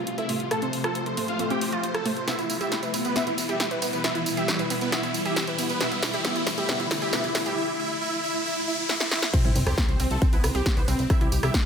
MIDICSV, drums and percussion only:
0, 0, Header, 1, 2, 480
1, 0, Start_track
1, 0, Key_signature, 0, "major"
1, 0, Tempo, 441176
1, 556, Time_signature, 4, 2, 24, 8
1, 12682, End_track
2, 0, Start_track
2, 0, Title_t, "Drums"
2, 76, Note_on_c, 9, 42, 78
2, 185, Note_off_c, 9, 42, 0
2, 196, Note_on_c, 9, 42, 51
2, 305, Note_off_c, 9, 42, 0
2, 315, Note_on_c, 9, 46, 106
2, 424, Note_off_c, 9, 46, 0
2, 436, Note_on_c, 9, 42, 48
2, 544, Note_off_c, 9, 42, 0
2, 556, Note_on_c, 9, 37, 65
2, 556, Note_on_c, 9, 42, 78
2, 664, Note_off_c, 9, 37, 0
2, 664, Note_off_c, 9, 42, 0
2, 675, Note_on_c, 9, 42, 50
2, 784, Note_off_c, 9, 42, 0
2, 796, Note_on_c, 9, 46, 108
2, 904, Note_off_c, 9, 46, 0
2, 916, Note_on_c, 9, 37, 86
2, 916, Note_on_c, 9, 42, 53
2, 1024, Note_off_c, 9, 37, 0
2, 1024, Note_off_c, 9, 42, 0
2, 1036, Note_on_c, 9, 42, 72
2, 1144, Note_off_c, 9, 42, 0
2, 1156, Note_on_c, 9, 42, 50
2, 1265, Note_off_c, 9, 42, 0
2, 1276, Note_on_c, 9, 46, 109
2, 1385, Note_off_c, 9, 46, 0
2, 1396, Note_on_c, 9, 42, 48
2, 1505, Note_off_c, 9, 42, 0
2, 1516, Note_on_c, 9, 42, 78
2, 1625, Note_off_c, 9, 42, 0
2, 1636, Note_on_c, 9, 42, 50
2, 1745, Note_off_c, 9, 42, 0
2, 1756, Note_on_c, 9, 46, 113
2, 1865, Note_off_c, 9, 46, 0
2, 1876, Note_on_c, 9, 42, 46
2, 1985, Note_off_c, 9, 42, 0
2, 1996, Note_on_c, 9, 42, 74
2, 2105, Note_off_c, 9, 42, 0
2, 2116, Note_on_c, 9, 37, 86
2, 2116, Note_on_c, 9, 42, 50
2, 2225, Note_off_c, 9, 37, 0
2, 2225, Note_off_c, 9, 42, 0
2, 2236, Note_on_c, 9, 46, 109
2, 2345, Note_off_c, 9, 46, 0
2, 2357, Note_on_c, 9, 42, 50
2, 2465, Note_off_c, 9, 42, 0
2, 2476, Note_on_c, 9, 38, 51
2, 2476, Note_on_c, 9, 42, 77
2, 2476, Note_on_c, 9, 54, 47
2, 2585, Note_off_c, 9, 38, 0
2, 2585, Note_off_c, 9, 42, 0
2, 2585, Note_off_c, 9, 54, 0
2, 2597, Note_on_c, 9, 42, 51
2, 2597, Note_on_c, 9, 54, 22
2, 2706, Note_off_c, 9, 42, 0
2, 2706, Note_off_c, 9, 54, 0
2, 2717, Note_on_c, 9, 46, 107
2, 2717, Note_on_c, 9, 54, 76
2, 2825, Note_off_c, 9, 46, 0
2, 2825, Note_off_c, 9, 54, 0
2, 2837, Note_on_c, 9, 42, 52
2, 2837, Note_on_c, 9, 54, 34
2, 2946, Note_off_c, 9, 42, 0
2, 2946, Note_off_c, 9, 54, 0
2, 2957, Note_on_c, 9, 38, 48
2, 2957, Note_on_c, 9, 42, 77
2, 2957, Note_on_c, 9, 54, 45
2, 3065, Note_off_c, 9, 38, 0
2, 3065, Note_off_c, 9, 42, 0
2, 3065, Note_off_c, 9, 54, 0
2, 3077, Note_on_c, 9, 42, 50
2, 3077, Note_on_c, 9, 54, 21
2, 3185, Note_off_c, 9, 42, 0
2, 3185, Note_off_c, 9, 54, 0
2, 3196, Note_on_c, 9, 46, 104
2, 3196, Note_on_c, 9, 54, 76
2, 3305, Note_off_c, 9, 46, 0
2, 3305, Note_off_c, 9, 54, 0
2, 3316, Note_on_c, 9, 42, 51
2, 3316, Note_on_c, 9, 54, 34
2, 3425, Note_off_c, 9, 42, 0
2, 3425, Note_off_c, 9, 54, 0
2, 3436, Note_on_c, 9, 38, 53
2, 3436, Note_on_c, 9, 42, 75
2, 3436, Note_on_c, 9, 54, 44
2, 3545, Note_off_c, 9, 38, 0
2, 3545, Note_off_c, 9, 42, 0
2, 3545, Note_off_c, 9, 54, 0
2, 3556, Note_on_c, 9, 42, 53
2, 3556, Note_on_c, 9, 54, 24
2, 3665, Note_off_c, 9, 42, 0
2, 3665, Note_off_c, 9, 54, 0
2, 3676, Note_on_c, 9, 46, 105
2, 3676, Note_on_c, 9, 54, 76
2, 3785, Note_off_c, 9, 46, 0
2, 3785, Note_off_c, 9, 54, 0
2, 3797, Note_on_c, 9, 42, 46
2, 3797, Note_on_c, 9, 54, 31
2, 3905, Note_off_c, 9, 42, 0
2, 3905, Note_off_c, 9, 54, 0
2, 3916, Note_on_c, 9, 38, 58
2, 3916, Note_on_c, 9, 42, 79
2, 3916, Note_on_c, 9, 54, 45
2, 4025, Note_off_c, 9, 38, 0
2, 4025, Note_off_c, 9, 42, 0
2, 4025, Note_off_c, 9, 54, 0
2, 4036, Note_on_c, 9, 42, 47
2, 4036, Note_on_c, 9, 54, 21
2, 4145, Note_off_c, 9, 42, 0
2, 4145, Note_off_c, 9, 54, 0
2, 4156, Note_on_c, 9, 46, 106
2, 4156, Note_on_c, 9, 54, 76
2, 4265, Note_off_c, 9, 46, 0
2, 4265, Note_off_c, 9, 54, 0
2, 4277, Note_on_c, 9, 42, 51
2, 4277, Note_on_c, 9, 54, 32
2, 4386, Note_off_c, 9, 42, 0
2, 4386, Note_off_c, 9, 54, 0
2, 4397, Note_on_c, 9, 38, 65
2, 4397, Note_on_c, 9, 42, 85
2, 4397, Note_on_c, 9, 54, 43
2, 4506, Note_off_c, 9, 38, 0
2, 4506, Note_off_c, 9, 42, 0
2, 4506, Note_off_c, 9, 54, 0
2, 4517, Note_on_c, 9, 42, 51
2, 4517, Note_on_c, 9, 54, 22
2, 4625, Note_off_c, 9, 42, 0
2, 4625, Note_off_c, 9, 54, 0
2, 4637, Note_on_c, 9, 46, 100
2, 4637, Note_on_c, 9, 54, 75
2, 4745, Note_off_c, 9, 46, 0
2, 4745, Note_off_c, 9, 54, 0
2, 4757, Note_on_c, 9, 42, 55
2, 4757, Note_on_c, 9, 54, 34
2, 4866, Note_off_c, 9, 42, 0
2, 4866, Note_off_c, 9, 54, 0
2, 4877, Note_on_c, 9, 38, 67
2, 4877, Note_on_c, 9, 42, 78
2, 4877, Note_on_c, 9, 54, 46
2, 4986, Note_off_c, 9, 38, 0
2, 4986, Note_off_c, 9, 42, 0
2, 4986, Note_off_c, 9, 54, 0
2, 4997, Note_on_c, 9, 42, 53
2, 4997, Note_on_c, 9, 54, 21
2, 5106, Note_off_c, 9, 42, 0
2, 5106, Note_off_c, 9, 54, 0
2, 5117, Note_on_c, 9, 46, 107
2, 5117, Note_on_c, 9, 54, 79
2, 5225, Note_off_c, 9, 46, 0
2, 5225, Note_off_c, 9, 54, 0
2, 5237, Note_on_c, 9, 42, 53
2, 5237, Note_on_c, 9, 54, 33
2, 5346, Note_off_c, 9, 42, 0
2, 5346, Note_off_c, 9, 54, 0
2, 5357, Note_on_c, 9, 38, 66
2, 5357, Note_on_c, 9, 42, 82
2, 5357, Note_on_c, 9, 54, 46
2, 5465, Note_off_c, 9, 38, 0
2, 5465, Note_off_c, 9, 42, 0
2, 5465, Note_off_c, 9, 54, 0
2, 5477, Note_on_c, 9, 42, 53
2, 5477, Note_on_c, 9, 54, 24
2, 5585, Note_off_c, 9, 42, 0
2, 5585, Note_off_c, 9, 54, 0
2, 5596, Note_on_c, 9, 46, 97
2, 5596, Note_on_c, 9, 54, 76
2, 5705, Note_off_c, 9, 46, 0
2, 5705, Note_off_c, 9, 54, 0
2, 5717, Note_on_c, 9, 42, 50
2, 5717, Note_on_c, 9, 54, 31
2, 5825, Note_off_c, 9, 42, 0
2, 5825, Note_off_c, 9, 54, 0
2, 5836, Note_on_c, 9, 38, 71
2, 5836, Note_on_c, 9, 42, 76
2, 5836, Note_on_c, 9, 54, 47
2, 5945, Note_off_c, 9, 38, 0
2, 5945, Note_off_c, 9, 42, 0
2, 5945, Note_off_c, 9, 54, 0
2, 5956, Note_on_c, 9, 42, 55
2, 5956, Note_on_c, 9, 54, 22
2, 6065, Note_off_c, 9, 42, 0
2, 6065, Note_off_c, 9, 54, 0
2, 6076, Note_on_c, 9, 46, 105
2, 6076, Note_on_c, 9, 54, 75
2, 6185, Note_off_c, 9, 46, 0
2, 6185, Note_off_c, 9, 54, 0
2, 6196, Note_on_c, 9, 42, 52
2, 6196, Note_on_c, 9, 54, 35
2, 6305, Note_off_c, 9, 42, 0
2, 6305, Note_off_c, 9, 54, 0
2, 6316, Note_on_c, 9, 38, 73
2, 6316, Note_on_c, 9, 42, 86
2, 6316, Note_on_c, 9, 54, 44
2, 6425, Note_off_c, 9, 38, 0
2, 6425, Note_off_c, 9, 42, 0
2, 6425, Note_off_c, 9, 54, 0
2, 6436, Note_on_c, 9, 42, 54
2, 6436, Note_on_c, 9, 54, 21
2, 6545, Note_off_c, 9, 42, 0
2, 6545, Note_off_c, 9, 54, 0
2, 6556, Note_on_c, 9, 38, 72
2, 6556, Note_on_c, 9, 46, 102
2, 6556, Note_on_c, 9, 54, 76
2, 6665, Note_off_c, 9, 38, 0
2, 6665, Note_off_c, 9, 46, 0
2, 6665, Note_off_c, 9, 54, 0
2, 6676, Note_on_c, 9, 42, 56
2, 6676, Note_on_c, 9, 54, 34
2, 6785, Note_off_c, 9, 42, 0
2, 6785, Note_off_c, 9, 54, 0
2, 6796, Note_on_c, 9, 38, 79
2, 6796, Note_on_c, 9, 42, 81
2, 6796, Note_on_c, 9, 54, 42
2, 6905, Note_off_c, 9, 38, 0
2, 6905, Note_off_c, 9, 42, 0
2, 6905, Note_off_c, 9, 54, 0
2, 6916, Note_on_c, 9, 42, 53
2, 6916, Note_on_c, 9, 54, 22
2, 7025, Note_off_c, 9, 42, 0
2, 7025, Note_off_c, 9, 54, 0
2, 7036, Note_on_c, 9, 38, 83
2, 7036, Note_on_c, 9, 46, 102
2, 7036, Note_on_c, 9, 54, 75
2, 7144, Note_off_c, 9, 38, 0
2, 7144, Note_off_c, 9, 46, 0
2, 7144, Note_off_c, 9, 54, 0
2, 7156, Note_on_c, 9, 42, 58
2, 7156, Note_on_c, 9, 54, 32
2, 7265, Note_off_c, 9, 42, 0
2, 7265, Note_off_c, 9, 54, 0
2, 7277, Note_on_c, 9, 38, 88
2, 7277, Note_on_c, 9, 42, 85
2, 7277, Note_on_c, 9, 54, 45
2, 7385, Note_off_c, 9, 38, 0
2, 7385, Note_off_c, 9, 42, 0
2, 7385, Note_off_c, 9, 54, 0
2, 7396, Note_on_c, 9, 42, 57
2, 7396, Note_on_c, 9, 54, 23
2, 7505, Note_off_c, 9, 42, 0
2, 7505, Note_off_c, 9, 54, 0
2, 7516, Note_on_c, 9, 38, 88
2, 7516, Note_on_c, 9, 46, 101
2, 7516, Note_on_c, 9, 54, 77
2, 7625, Note_off_c, 9, 38, 0
2, 7625, Note_off_c, 9, 46, 0
2, 7625, Note_off_c, 9, 54, 0
2, 7636, Note_on_c, 9, 42, 52
2, 7636, Note_on_c, 9, 54, 31
2, 7745, Note_off_c, 9, 42, 0
2, 7745, Note_off_c, 9, 54, 0
2, 7756, Note_on_c, 9, 38, 93
2, 7756, Note_on_c, 9, 42, 83
2, 7756, Note_on_c, 9, 54, 43
2, 7865, Note_off_c, 9, 38, 0
2, 7865, Note_off_c, 9, 42, 0
2, 7865, Note_off_c, 9, 54, 0
2, 7876, Note_on_c, 9, 42, 53
2, 7876, Note_on_c, 9, 54, 22
2, 7985, Note_off_c, 9, 42, 0
2, 7985, Note_off_c, 9, 54, 0
2, 7996, Note_on_c, 9, 38, 89
2, 7996, Note_on_c, 9, 46, 100
2, 7996, Note_on_c, 9, 54, 75
2, 8105, Note_off_c, 9, 38, 0
2, 8105, Note_off_c, 9, 46, 0
2, 8105, Note_off_c, 9, 54, 0
2, 8116, Note_on_c, 9, 42, 54
2, 8116, Note_on_c, 9, 54, 32
2, 8225, Note_off_c, 9, 42, 0
2, 8225, Note_off_c, 9, 54, 0
2, 9676, Note_on_c, 9, 38, 65
2, 9785, Note_off_c, 9, 38, 0
2, 9797, Note_on_c, 9, 38, 64
2, 9905, Note_off_c, 9, 38, 0
2, 9916, Note_on_c, 9, 38, 82
2, 10025, Note_off_c, 9, 38, 0
2, 10036, Note_on_c, 9, 38, 85
2, 10145, Note_off_c, 9, 38, 0
2, 10156, Note_on_c, 9, 36, 117
2, 10157, Note_on_c, 9, 42, 89
2, 10157, Note_on_c, 9, 49, 110
2, 10157, Note_on_c, 9, 54, 42
2, 10265, Note_off_c, 9, 36, 0
2, 10266, Note_off_c, 9, 42, 0
2, 10266, Note_off_c, 9, 49, 0
2, 10266, Note_off_c, 9, 54, 0
2, 10276, Note_on_c, 9, 42, 55
2, 10276, Note_on_c, 9, 54, 19
2, 10385, Note_off_c, 9, 42, 0
2, 10385, Note_off_c, 9, 54, 0
2, 10397, Note_on_c, 9, 46, 108
2, 10397, Note_on_c, 9, 54, 72
2, 10505, Note_off_c, 9, 46, 0
2, 10505, Note_off_c, 9, 54, 0
2, 10517, Note_on_c, 9, 37, 79
2, 10517, Note_on_c, 9, 42, 56
2, 10517, Note_on_c, 9, 54, 33
2, 10625, Note_off_c, 9, 37, 0
2, 10625, Note_off_c, 9, 42, 0
2, 10625, Note_off_c, 9, 54, 0
2, 10637, Note_on_c, 9, 36, 127
2, 10637, Note_on_c, 9, 38, 124
2, 10637, Note_on_c, 9, 42, 85
2, 10637, Note_on_c, 9, 54, 41
2, 10745, Note_off_c, 9, 36, 0
2, 10745, Note_off_c, 9, 38, 0
2, 10745, Note_off_c, 9, 42, 0
2, 10745, Note_off_c, 9, 54, 0
2, 10757, Note_on_c, 9, 42, 55
2, 10757, Note_on_c, 9, 54, 21
2, 10865, Note_off_c, 9, 42, 0
2, 10865, Note_off_c, 9, 54, 0
2, 10877, Note_on_c, 9, 46, 110
2, 10877, Note_on_c, 9, 54, 74
2, 10985, Note_off_c, 9, 46, 0
2, 10985, Note_off_c, 9, 54, 0
2, 10997, Note_on_c, 9, 42, 57
2, 10997, Note_on_c, 9, 54, 32
2, 11105, Note_off_c, 9, 42, 0
2, 11105, Note_off_c, 9, 54, 0
2, 11116, Note_on_c, 9, 36, 122
2, 11117, Note_on_c, 9, 42, 80
2, 11117, Note_on_c, 9, 54, 39
2, 11225, Note_off_c, 9, 36, 0
2, 11225, Note_off_c, 9, 42, 0
2, 11225, Note_off_c, 9, 54, 0
2, 11237, Note_on_c, 9, 42, 59
2, 11237, Note_on_c, 9, 54, 21
2, 11345, Note_off_c, 9, 42, 0
2, 11345, Note_off_c, 9, 54, 0
2, 11357, Note_on_c, 9, 37, 76
2, 11357, Note_on_c, 9, 46, 103
2, 11357, Note_on_c, 9, 54, 69
2, 11465, Note_off_c, 9, 37, 0
2, 11465, Note_off_c, 9, 46, 0
2, 11465, Note_off_c, 9, 54, 0
2, 11477, Note_on_c, 9, 42, 56
2, 11477, Note_on_c, 9, 54, 30
2, 11586, Note_off_c, 9, 42, 0
2, 11586, Note_off_c, 9, 54, 0
2, 11596, Note_on_c, 9, 36, 113
2, 11597, Note_on_c, 9, 38, 127
2, 11597, Note_on_c, 9, 42, 81
2, 11597, Note_on_c, 9, 54, 42
2, 11705, Note_off_c, 9, 36, 0
2, 11706, Note_off_c, 9, 38, 0
2, 11706, Note_off_c, 9, 42, 0
2, 11706, Note_off_c, 9, 54, 0
2, 11717, Note_on_c, 9, 42, 57
2, 11717, Note_on_c, 9, 54, 21
2, 11826, Note_off_c, 9, 42, 0
2, 11826, Note_off_c, 9, 54, 0
2, 11837, Note_on_c, 9, 46, 101
2, 11837, Note_on_c, 9, 54, 67
2, 11946, Note_off_c, 9, 46, 0
2, 11946, Note_off_c, 9, 54, 0
2, 11957, Note_on_c, 9, 42, 56
2, 11957, Note_on_c, 9, 54, 30
2, 12066, Note_off_c, 9, 42, 0
2, 12066, Note_off_c, 9, 54, 0
2, 12076, Note_on_c, 9, 36, 115
2, 12077, Note_on_c, 9, 37, 61
2, 12077, Note_on_c, 9, 42, 81
2, 12077, Note_on_c, 9, 54, 42
2, 12185, Note_off_c, 9, 36, 0
2, 12186, Note_off_c, 9, 37, 0
2, 12186, Note_off_c, 9, 42, 0
2, 12186, Note_off_c, 9, 54, 0
2, 12197, Note_on_c, 9, 42, 54
2, 12197, Note_on_c, 9, 54, 20
2, 12306, Note_off_c, 9, 42, 0
2, 12306, Note_off_c, 9, 54, 0
2, 12317, Note_on_c, 9, 46, 111
2, 12317, Note_on_c, 9, 54, 72
2, 12426, Note_off_c, 9, 46, 0
2, 12426, Note_off_c, 9, 54, 0
2, 12437, Note_on_c, 9, 37, 83
2, 12437, Note_on_c, 9, 42, 55
2, 12437, Note_on_c, 9, 54, 30
2, 12546, Note_off_c, 9, 37, 0
2, 12546, Note_off_c, 9, 42, 0
2, 12546, Note_off_c, 9, 54, 0
2, 12557, Note_on_c, 9, 36, 127
2, 12557, Note_on_c, 9, 38, 127
2, 12557, Note_on_c, 9, 42, 82
2, 12557, Note_on_c, 9, 54, 42
2, 12665, Note_off_c, 9, 36, 0
2, 12666, Note_off_c, 9, 38, 0
2, 12666, Note_off_c, 9, 42, 0
2, 12666, Note_off_c, 9, 54, 0
2, 12682, End_track
0, 0, End_of_file